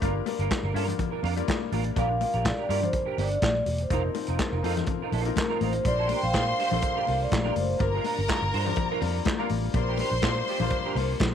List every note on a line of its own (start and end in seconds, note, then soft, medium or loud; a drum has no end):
0.01 0.20 G1 medium
0.01 0.20 G3 medium
0.01 0.20 A#3 medium
0.01 0.21 D4 medium
0.01 0.21 F4 medium
0.01 0.16 F4 medium
0.01 0.21 A#4 medium
0.01 0.14 A#4 medium
0.01 kick loud
0.01 closed hi-hat medium
0.01 muted conga soft
0.16 muted clean electric guitar stroke soft
0.26 0.63 G3 medium
0.26 0.63 A#3 medium
0.26 0.63 D4 medium
0.26 0.63 F4 medium
0.26 0.64 A#4 loud
0.26 muted clean electric guitar stroke soft
0.26 open hi-hat medium
0.26 muted conga medium
0.39 0.47 G1 medium
0.39 0.50 D4 medium
0.39 0.50 F4 medium
0.39 0.50 A#4 medium
0.39 closed hi-hat soft
0.51 muted clean electric guitar stroke soft
0.51 kick loud
0.51 snare loud
0.51 clap medium
0.51 closed hi-hat medium
0.51 high conga medium
0.63 0.71 G1 medium
0.63 0.74 D4 soft
0.63 0.74 F4 medium
0.63 0.75 A#4 medium
0.74 0.92 G2 medium
0.74 1.20 G3 medium
0.74 1.20 A#3 medium
0.74 1.20 D4 medium
0.74 0.95 D4 medium
0.74 1.20 F4 medium
0.74 0.87 F4 medium
0.74 1.21 A#4 medium
0.74 0.87 A#4 medium
0.74 open hi-hat medium
0.88 muted clean electric guitar stroke soft
0.88 closed hi-hat soft
0.88 low conga medium
0.98 muted clean electric guitar stroke soft
0.98 kick medium
0.98 closed hi-hat medium
0.98 low conga medium
1.11 1.22 D4 medium
1.11 1.22 F4 medium
1.11 1.23 A#4 medium
1.23 1.41 F2 medium
1.23 1.42 D4 medium
1.23 1.36 F4 medium
1.23 1.35 A#4 medium
1.23 open hi-hat medium
1.23 muted conga soft
1.36 1.82 G3 medium
1.36 1.82 A#3 medium
1.36 1.82 D4 medium
1.36 1.82 F4 medium
1.36 1.82 A#4 medium
1.36 muted clean electric guitar stroke soft
1.36 closed hi-hat medium
1.48 muted clean electric guitar stroke soft
1.48 kick loud
1.48 snare loud
1.48 clap medium
1.48 closed hi-hat medium
1.48 high conga medium
1.61 muted clean electric guitar stroke soft
1.72 1.90 A1 medium
1.72 1.91 D4 medium
1.72 1.85 F4 medium
1.72 1.84 A#4 medium
1.72 open hi-hat medium
1.72 high conga medium
1.84 muted clean electric guitar stroke soft
1.84 closed hi-hat medium
1.96 2.23 A#1 medium
1.96 2.15 G3 medium
1.96 2.15 A#3 medium
1.96 2.15 D4 medium
1.96 2.15 F4 medium
1.96 2.09 G4 medium
1.96 2.15 A#4 medium
1.96 2.09 A#4 medium
1.96 2.47 F5 loud
1.96 kick loud
1.96 closed hi-hat medium
1.96 muted conga medium
2.10 muted clean electric guitar stroke soft
2.20 2.58 G3 medium
2.20 2.58 A#3 medium
2.20 2.58 D4 medium
2.20 2.58 F4 medium
2.20 2.58 A#4 medium
2.20 muted clean electric guitar stroke soft
2.20 open hi-hat medium
2.20 muted conga medium
2.34 2.51 A#1 medium
2.34 2.45 D4 medium
2.34 2.45 G4 medium
2.34 2.46 A#4 medium
2.34 closed hi-hat soft
2.45 2.85 D5 medium
2.45 muted clean electric guitar stroke soft
2.45 kick loud
2.45 snare loud
2.45 clap medium
2.45 closed hi-hat medium
2.45 high conga medium
2.58 2.68 D4 medium
2.58 2.68 G4 medium
2.58 2.68 A#4 medium
2.69 2.87 G2 medium
2.69 3.42 G3 medium
2.69 3.42 A#3 medium
2.69 2.88 D4 medium
2.69 3.42 D4 medium
2.69 3.42 F4 medium
2.69 2.82 G4 medium
2.69 2.81 A#4 medium
2.69 3.42 A#4 medium
2.69 open hi-hat medium
2.82 3.20 C5 medium
2.82 muted clean electric guitar stroke soft
2.82 closed hi-hat soft
2.82 low conga medium
2.93 muted clean electric guitar stroke soft
2.93 kick loud
2.93 closed hi-hat medium
3.06 3.16 D4 medium
3.06 3.17 G4 medium
3.06 3.17 A#4 medium
3.17 3.35 G1 medium
3.17 3.36 D4 medium
3.17 3.30 G4 medium
3.17 3.30 A#4 medium
3.17 3.44 D5 medium
3.17 open hi-hat medium
3.17 muted conga soft
3.31 muted clean electric guitar stroke soft
3.31 closed hi-hat soft
3.41 3.60 A#1 medium
3.41 3.79 D5 loud
3.41 muted clean electric guitar stroke soft
3.41 kick loud
3.41 snare loud
3.41 clap medium
3.41 closed hi-hat medium
3.41 high conga medium
3.54 muted clean electric guitar stroke soft
3.66 3.84 E1 medium
3.66 open hi-hat medium
3.66 high conga medium
3.78 muted clean electric guitar stroke soft
3.78 closed hi-hat medium
3.82 3.93 C5 medium
3.90 4.08 F1 medium
3.90 4.09 F3 medium
3.90 4.09 A#3 medium
3.90 4.09 C4 medium
3.90 4.10 D#4 medium
3.90 4.04 F4 medium
3.90 4.10 A#4 medium
3.90 4.03 A#4 medium
3.90 5.34 A#4 medium
3.90 kick loud
3.90 closed hi-hat medium
3.90 muted conga medium
4.04 muted clean electric guitar stroke soft
4.14 4.52 F3 medium
4.14 4.52 A#3 medium
4.14 4.52 C4 medium
4.14 4.52 D#4 medium
4.14 4.52 A#4 medium
4.14 muted clean electric guitar stroke soft
4.14 open hi-hat medium
4.14 muted conga medium
4.27 4.36 F1 medium
4.27 4.39 D#4 medium
4.27 4.39 F4 medium
4.27 4.40 A#4 medium
4.27 closed hi-hat soft
4.39 muted clean electric guitar stroke soft
4.39 kick medium
4.39 snare medium
4.39 clap medium
4.39 closed hi-hat medium
4.39 high conga medium
4.52 4.61 F1 medium
4.52 4.63 D#4 soft
4.52 4.63 F4 medium
4.52 4.64 A#4 medium
4.63 4.81 F2 medium
4.63 5.09 F3 medium
4.63 5.09 A#3 medium
4.63 5.09 C4 medium
4.63 4.83 D#4 medium
4.63 5.09 D#4 medium
4.63 4.77 F4 medium
4.63 4.70 A4 medium
4.63 4.76 A#4 medium
4.63 open hi-hat medium
4.70 5.12 A#4 loud
4.77 muted clean electric guitar stroke soft
4.77 snare soft
4.77 closed hi-hat soft
4.77 low conga medium
4.86 muted clean electric guitar stroke soft
4.86 kick loud
4.86 closed hi-hat medium
4.86 low conga medium
5.02 5.11 D#4 medium
5.02 5.11 F4 medium
5.02 5.12 A#4 medium
5.12 5.30 A#1 medium
5.12 5.33 D#4 medium
5.12 5.25 F4 medium
5.12 5.24 A#4 medium
5.12 open hi-hat medium
5.12 muted conga soft
5.25 5.70 F3 medium
5.25 5.71 A#3 medium
5.25 5.71 C4 medium
5.25 5.71 D#4 medium
5.25 5.71 A#4 loud
5.25 muted clean electric guitar stroke soft
5.25 closed hi-hat soft
5.36 5.63 A#4 medium
5.36 muted clean electric guitar stroke soft
5.36 kick loud
5.36 snare loud
5.36 clap loud
5.36 closed hi-hat medium
5.36 high conga medium
5.49 5.60 D#4 medium
5.49 5.61 F4 medium
5.49 5.61 A#4 medium
5.61 5.79 A1 medium
5.61 5.76 D#4 medium
5.61 5.74 F4 medium
5.61 5.74 A#4 medium
5.61 5.87 C5 medium
5.61 open hi-hat medium
5.61 high conga medium
5.73 muted clean electric guitar stroke medium
5.73 closed hi-hat soft
5.85 6.12 A#1 medium
5.85 6.22 G3 medium
5.85 6.23 A#3 medium
5.85 6.23 D4 medium
5.85 6.23 F4 medium
5.85 6.23 A#4 medium
5.85 7.52 C5 medium
5.85 6.17 D5 loud
5.85 7.52 C6 loud
5.85 muted clean electric guitar stroke soft
5.85 kick loud
5.85 closed hi-hat medium
5.85 muted conga soft
5.99 6.09 D4 medium
5.99 6.09 G4 medium
5.99 6.10 A#4 medium
6.09 6.25 D4 medium
6.09 6.22 G4 medium
6.09 6.22 A#4 medium
6.09 open hi-hat medium
6.09 muted conga medium
6.16 6.23 G5 medium
6.23 6.31 A#1 medium
6.23 6.59 F5 loud
6.23 muted clean electric guitar stroke soft
6.34 6.52 A#2 medium
6.34 6.62 G3 medium
6.34 6.62 A#3 medium
6.34 6.62 D4 medium
6.34 6.62 F4 medium
6.34 6.62 A#4 medium
6.34 kick loud
6.34 snare loud
6.34 clap medium
6.34 closed hi-hat medium
6.34 high conga medium
6.47 muted clean electric guitar stroke soft
6.59 6.77 D4 medium
6.59 6.71 G4 medium
6.59 6.71 C5 medium
6.59 7.17 F5 loud
6.59 open hi-hat medium
6.71 6.80 A#1 loud
6.71 6.98 G3 medium
6.71 6.98 A#3 medium
6.71 6.98 D4 medium
6.71 6.99 F4 medium
6.71 6.99 A4 medium
6.71 muted clean electric guitar stroke soft
6.71 low conga medium
6.82 muted clean electric guitar stroke soft
6.82 kick loud
6.82 closed hi-hat medium
6.96 7.06 D4 medium
6.96 7.06 G4 medium
6.96 7.06 A#4 medium
7.07 7.25 C2 medium
7.07 7.34 G3 medium
7.07 7.35 A#3 medium
7.07 7.35 D4 medium
7.07 7.35 F4 medium
7.07 7.35 A#4 medium
7.07 muted clean electric guitar stroke soft
7.07 open hi-hat medium
7.07 muted conga soft
7.20 7.58 D5 loud
7.20 muted clean electric guitar stroke soft
7.32 7.49 A#1 loud
7.32 kick loud
7.32 snare loud
7.32 clap medium
7.32 closed hi-hat medium
7.32 high conga medium
7.43 7.71 G3 medium
7.43 7.72 A#3 medium
7.43 7.54 D4 medium
7.43 7.72 D4 medium
7.43 7.72 F4 medium
7.43 7.55 G4 medium
7.43 7.55 A#4 medium
7.43 7.72 A#4 medium
7.55 7.73 F#1 medium
7.55 7.82 C5 medium
7.55 muted clean electric guitar stroke soft
7.55 open hi-hat medium
7.55 high conga medium
7.69 muted clean electric guitar stroke soft
7.79 7.98 G1 medium
7.79 8.17 G3 medium
7.79 8.17 A#3 medium
7.79 8.17 D4 medium
7.79 8.17 F4 medium
7.79 9.47 A#4 medium
7.79 8.17 A#4 medium
7.79 9.23 A#4 medium
7.79 9.46 A#5 loud
7.79 muted clean electric guitar stroke soft
7.79 kick loud
7.79 closed hi-hat medium
7.79 muted conga soft
7.94 8.04 D4 medium
7.94 8.05 F4 medium
7.94 8.05 A#4 medium
8.04 8.20 D4 medium
8.04 8.18 F4 medium
8.04 8.16 A#4 medium
8.04 open hi-hat medium
8.04 muted conga medium
8.18 8.26 G1 medium
8.18 muted clean electric guitar stroke soft
8.28 8.56 G3 medium
8.28 8.56 A#3 medium
8.28 8.56 D4 medium
8.28 8.56 F4 medium
8.28 8.57 A#4 medium
8.28 kick loud
8.28 snare loud
8.28 clap medium
8.28 closed hi-hat medium
8.28 high conga medium
8.42 8.50 G1 loud
8.42 muted clean electric guitar stroke soft
8.53 8.71 G2 medium
8.53 8.72 D4 medium
8.53 8.67 F4 medium
8.53 8.66 C5 medium
8.53 open hi-hat medium
8.65 8.92 G3 medium
8.65 8.92 A#3 medium
8.65 8.93 D4 medium
8.65 8.93 F4 medium
8.65 8.93 C5 medium
8.65 muted clean electric guitar stroke soft
8.65 low conga medium
8.76 muted clean electric guitar stroke soft
8.76 kick loud
8.76 closed hi-hat medium
8.76 low conga medium
8.91 9.01 D4 medium
8.91 9.02 F4 medium
8.91 9.02 A#4 medium
9.01 9.19 F2 medium
9.01 9.28 G3 medium
9.01 9.29 A#3 medium
9.01 9.29 D4 medium
9.01 9.29 F4 medium
9.01 9.29 A#4 medium
9.01 muted clean electric guitar stroke soft
9.01 open hi-hat medium
9.01 muted conga soft
9.16 muted clean electric guitar stroke soft
9.25 kick loud
9.25 snare loud
9.25 clap loud
9.25 closed hi-hat medium
9.25 high conga medium
9.38 9.65 G3 medium
9.38 9.66 A#3 medium
9.38 9.66 D4 medium
9.38 9.50 D4 medium
9.38 9.66 F4 medium
9.38 9.51 F4 medium
9.38 9.51 A#4 medium
9.38 9.66 A#4 loud
9.49 9.68 A1 medium
9.49 muted clean electric guitar stroke soft
9.49 open hi-hat medium
9.49 high conga medium
9.65 muted clean electric guitar stroke soft
9.74 10.01 A#1 medium
9.74 10.11 G3 medium
9.74 10.11 A#3 medium
9.74 10.12 D4 medium
9.74 10.12 F4 medium
9.74 10.12 A#4 loud
9.74 11.34 C5 loud
9.74 11.34 C6 loud
9.74 muted clean electric guitar stroke soft
9.74 kick loud
9.74 closed hi-hat medium
9.74 muted conga medium
9.88 9.98 D4 medium
9.88 9.99 G4 medium
9.88 9.99 A#4 medium
9.98 10.14 D4 medium
9.98 10.11 G4 medium
9.98 10.10 A#4 medium
9.98 open hi-hat medium
9.98 muted conga medium
10.11 10.20 A#1 medium
10.11 muted clean electric guitar stroke medium
10.22 10.41 A#2 medium
10.22 10.50 G3 medium
10.22 10.51 A#3 medium
10.22 10.51 D4 medium
10.22 10.51 F4 medium
10.22 10.51 A#4 medium
10.22 muted clean electric guitar stroke soft
10.22 kick loud
10.22 snare loud
10.22 clap medium
10.22 closed hi-hat medium
10.22 high conga medium
10.37 muted clean electric guitar stroke soft
10.48 10.67 D4 medium
10.48 10.60 G4 medium
10.48 10.60 C5 medium
10.48 open hi-hat medium
10.60 10.68 A#1 medium
10.60 10.87 G3 medium
10.60 10.87 A#3 medium
10.60 10.88 D4 medium
10.60 10.88 F4 medium
10.60 10.88 A#4 loud
10.60 muted clean electric guitar stroke soft
10.60 low conga medium
10.70 muted clean electric guitar stroke soft
10.70 kick medium
10.70 closed hi-hat soft
10.85 10.95 D4 medium
10.85 10.96 G4 medium
10.85 10.97 A#4 medium
10.95 11.13 C2 loud
10.95 11.23 G3 medium
10.95 11.23 A#3 medium
10.95 11.24 D4 medium
10.95 11.24 F4 medium
10.95 11.24 A#4 medium
10.95 muted clean electric guitar stroke soft
10.95 open hi-hat medium
10.95 muted conga soft
11.10 muted clean electric guitar stroke soft
11.20 11.34 A#1 loud
11.20 muted clean electric guitar stroke soft
11.20 kick loud
11.20 snare loud
11.20 clap medium
11.20 closed hi-hat medium
11.20 high conga medium